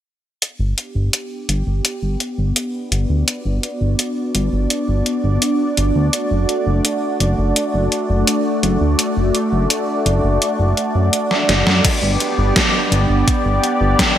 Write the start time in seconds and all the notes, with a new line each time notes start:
0.42 B3 D4 G4 D5, closed hi-hat
0.59 G1
0.78 closed hi-hat
0.95 G1
1.13 closed hi-hat
1.49 G1, closed hi-hat
1.67 G1
1.85 closed hi-hat
2.03 G1
2.20 closed hi-hat
2.38 G1
2.56 closed hi-hat
2.92 G1, closed hi-hat
3.10 D2
3.28 F#4, closed hi-hat
3.45 G1
3.63 closed hi-hat
3.81 G1
3.99 closed hi-hat
4.35 G1, closed hi-hat
4.53 G1
4.70 closed hi-hat
4.88 G1
5.06 closed hi-hat
5.24 G1
5.42 closed hi-hat
5.77 G1, closed hi-hat
5.96 D2
6.13 A3, closed hi-hat
6.31 F#1
6.49 closed hi-hat
6.67 F#1
6.85 closed hi-hat
7.20 F#1, closed hi-hat
7.38 F#1
7.56 closed hi-hat
7.74 F#1
7.92 closed hi-hat
8.10 F#1
8.27 closed hi-hat
8.63 F#1, closed hi-hat
8.81 D2
8.99 closed hi-hat
9.17 F#1
9.35 closed hi-hat
9.53 F#1
9.70 closed hi-hat
10.06 F#1, closed hi-hat
10.24 F#1
10.42 closed hi-hat
10.59 F#1
10.77 closed hi-hat
10.95 F#2
11.13 closed hi-hat
11.31 snare
11.49 F#1, snare, closed hi-hat
11.67 F#2, snare
11.84 B3 D4 G4 D5, kick, closed hi-hat, crash
12.03 G1
12.20 closed hi-hat
12.38 G1
12.56 kick, snare, closed hi-hat
12.92 G1, closed hi-hat
13.09 G1
13.28 kick, closed hi-hat
13.45 G1
13.64 closed hi-hat
13.81 G1
13.99 kick, snare, closed hi-hat